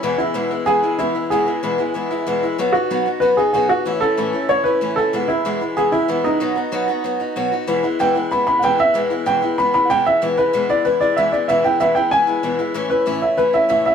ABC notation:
X:1
M:4/4
L:1/8
Q:1/4=189
K:E
V:1 name="Upright piano"
z E3 G2 E2 | G6 z2 | z F3 B G G F | z A3 c B2 A |
z E2 z G E2 D- | D6 z2 | z2 =g2 b b [fg] e | z2 =g2 b b [fg] e |
z B2 =d B d e d | e =g e g ^g2 z2 | z B2 e B e e e |]
V:2 name="Steel-string acoustic guitar"
[E,,B,,E,G,B,E] [E,G,B,E] [E,,B,,E,G,B,E] [E,G,B,E] [E,G,B,E] [E,G,B,E] [E,,B,,E,G,B,E] [E,G,B,E] | [E,,B,,E,G,B,E] [E,G,B,E] [E,,B,,E,G,B,E] [E,G,B,E] [E,G,B,E] [E,G,B,E] [E,,B,,E,G,B,E] [E,G,B,E] | [B,,F,B,DF] [B,DF] [B,,F,B,DF] [B,DF] [F,B,DF] [B,DF] [B,,F,B,DF] [B,DF] | [A,,E,A,CE] [A,CE] [A,,E,A,CE] [A,CE] [E,A,CE] [A,CE] [A,,E,A,CE] [A,CE] |
[E,,B,,E,G,B,E] [E,G,B,E] [E,,B,,E,G,B,E] [E,G,B,E] [E,G,B,E] [E,G,B,E] [E,,B,,E,G,B,E] [E,G,B,E] | [B,,F,B,DF] [B,DF] [B,,F,B,DF] [B,DF] [F,B,DF] [B,DF] [B,,F,B,DF] [B,DF] | [E,,B,,E,G,B,E] [E,G,B,E] [E,,B,,E,G,B,E] [E,G,B,E] [E,G,B,E] [E,G,B,E] [E,,B,,E,G,B,E] [E,G,B,E] | [E,,B,,E,G,B,E] [E,G,B,E] [E,,B,,E,G,B,E] [E,G,B,E] [E,G,B,E] [E,G,B,E] [E,,B,,E,G,B,E] [E,G,B,E] |
[E,,B,,E,G,B,E] [E,G,B,E] [E,,B,,E,G,B,E] [E,G,B,E] [E,G,B,E] [E,G,B,E] [E,,B,,E,G,B,E] [E,G,B,E] | [E,,B,,E,G,B,E] [E,G,B,E] [E,,B,,E,G,B,E] [E,G,B,E] [E,G,B,E] [E,G,B,E] [E,,B,,E,G,B,E] [E,G,B,E] | [A,,E,A,CE] [A,CE] [A,,E,A,CE] [A,CE] [E,A,CE] [A,CE] [A,,E,A,CE] [A,CE] |]